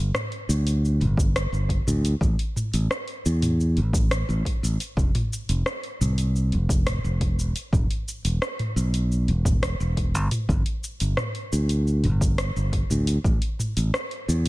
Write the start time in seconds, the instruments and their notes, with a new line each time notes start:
Already playing: fingered electric bass G1
0.15 cross-stick, mid tom, shaker
0.32 open hi-hat
0.49 fingered electric bass D2, shaker
0.67 open hi-hat, shaker
0.85 shaker
1.01 fingered electric bass G1, mid tom, open hi-hat
1.17 kick, shaker
1.36 cross-stick, open hi-hat, shaker
1.52 fingered electric bass G1, shaker
1.69 kick, open hi-hat
1.87 fingered electric bass D2, mid tom, shaker
2.05 open hi-hat, shaker
2.21 fingered electric bass A1, kick, shaker
2.39 open hi-hat
2.56 mid tom, shaker
2.74 fingered electric bass A1, open hi-hat, shaker
2.91 cross-stick, shaker
3.08 open hi-hat
3.26 fingered electric bass E2, shaker
3.42 mid tom, open hi-hat, shaker
3.60 shaker
3.77 fingered electric bass A1, open hi-hat
3.93 kick, shaker
4.11 cross-stick, open hi-hat, shaker
4.29 fingered electric bass A1, mid tom, shaker
4.45 kick, open hi-hat
4.63 fingered electric bass A1, shaker
4.80 open hi-hat, shaker
4.97 fingered electric bass F1, kick, shaker
5.15 mid tom, open hi-hat
5.33 shaker
5.49 fingered electric bass F1, open hi-hat, shaker
5.66 cross-stick, shaker
5.83 open hi-hat
6.01 fingered electric bass C2, mid tom, shaker
6.18 open hi-hat, shaker
6.36 shaker
6.52 fingered electric bass F1, open hi-hat
6.69 kick, shaker
6.87 cross-stick, mid tom, open hi-hat, shaker
7.04 fingered electric bass F1, shaker
7.21 kick, open hi-hat
7.39 fingered electric bass E1, shaker
7.56 open hi-hat, shaker
7.73 fingered electric bass E1, kick, mid tom, shaker
7.91 open hi-hat
8.08 shaker
8.25 fingered electric bass E1, open hi-hat, shaker
8.42 cross-stick, shaker
8.59 mid tom, open hi-hat
8.76 fingered electric bass B1, shaker
8.94 open hi-hat, shaker
9.12 shaker
9.28 fingered electric bass E1, open hi-hat
9.45 kick, mid tom, shaker
9.63 cross-stick, open hi-hat, shaker
9.80 fingered electric bass E1, shaker
9.97 kick, open hi-hat
10.14 fingered electric bass G1, shaker
10.31 mid tom, open hi-hat, shaker
10.49 fingered electric bass G1, kick, shaker
10.66 open hi-hat
10.84 shaker
11.00 fingered electric bass G1, open hi-hat, shaker
11.17 cross-stick, mid tom, shaker
11.35 open hi-hat
11.53 fingered electric bass D2, shaker
11.69 open hi-hat, shaker
11.87 shaker
12.04 fingered electric bass G1, mid tom, open hi-hat
12.21 kick, shaker
12.38 cross-stick, open hi-hat, shaker
12.56 fingered electric bass G1, shaker
12.73 kick, open hi-hat
12.90 fingered electric bass D2, mid tom, shaker
13.07 open hi-hat, shaker
13.24 fingered electric bass A1, kick, shaker
13.42 open hi-hat
13.59 mid tom, shaker
13.77 fingered electric bass A1, open hi-hat, shaker
13.94 cross-stick, shaker
14.11 open hi-hat
14.28 fingered electric bass E2, shaker